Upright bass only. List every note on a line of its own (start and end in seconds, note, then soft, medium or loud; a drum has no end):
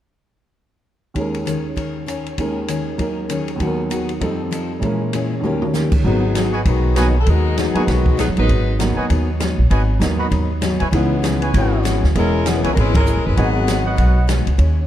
6.04 6.62 G#1 medium
6.65 7.23 B1 medium
7.27 7.72 D#2 medium
7.74 muted upright bass stroke soft
7.87 8.25 B1 medium
8.28 8.37 D#2 medium
8.38 8.48 A1 medium
8.49 8.94 G#1 medium
8.97 muted upright bass stroke soft
9.10 9.55 D#2 medium
9.58 9.70 A#1 medium
9.71 9.99 G#1 medium
10.01 10.29 D#2 medium
10.31 10.77 D#2 medium
10.81 10.92 D2 medium
10.92 11.50 C#2 medium
11.54 11.99 G#1 medium
12.03 12.14 D2 medium
12.15 12.60 E1 medium
12.64 12.75 C2 medium
12.76 13.14 G#1 medium
13.17 13.26 B1 medium
13.27 13.36 F#1 medium
13.37 13.95 G#1 medium
13.97 14.43 B1 medium
14.46 14.57 C#2 medium
14.58 14.87 D#2 medium